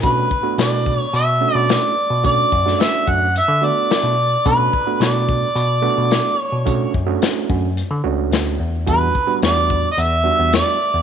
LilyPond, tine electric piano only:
\new Staff \with { instrumentName = "Tine electric piano" } { \clef bass \time 4/4 \key b \minor \tempo 4 = 109 b,8 r8 b,4 b,8. b,8 r8 b,16~ | b,8 fis,8 r8 fis,8. d8 r8 b,8. | b,8 r8 b,4 b,8. b,8 r8 b,16~ | b,8 fis,8 r8 fis,8. d16 cis,8 d,8 e,8 |
e,8 r8 e,4 e,8. e,8 r8 e,16 | }